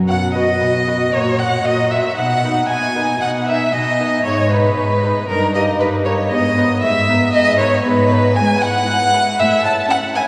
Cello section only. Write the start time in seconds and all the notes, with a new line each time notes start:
0.08 B2
0.61 B2
1.13 A#2
1.65 A#2
2.17 B2
2.70 B2
3.21 B2
3.73 B2
4.25 G#2
4.77 G#2
5.29 G2
5.80 G2
6.31 G#2
6.83 G#2
7.34 G#2
7.85 G#2
8.36 G#2
9.39 A2